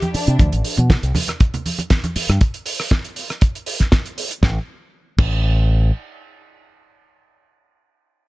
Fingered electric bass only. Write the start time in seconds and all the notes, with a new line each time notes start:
0.14 muted fingered electric bass stroke
0.28 C3
0.39 D2
0.53 A1
0.78 B2
1.03 C2
2.16 muted fingered electric bass stroke
2.29 G2
4.43 A1
5.19 A1